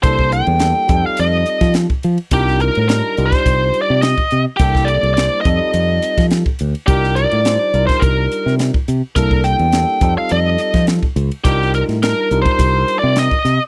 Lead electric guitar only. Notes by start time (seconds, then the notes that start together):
0.03 C5
0.33 G5
1.06 F5
1.20 D#5
2.33 G4
2.61 A#4
2.89 A#4
3.26 C5
3.82 D5
4.02 D#5
4.57 G4
4.85 D5
5.14 D5
5.41 D#5
6.87 G4
7.15 D5
7.87 C5
8.00 A#4
9.16 A#4
9.44 G5
10.18 F5
10.32 D#5
11.44 G4
11.75 A#4
12.03 A#4
12.42 C5
12.99 D5
13.18 D#5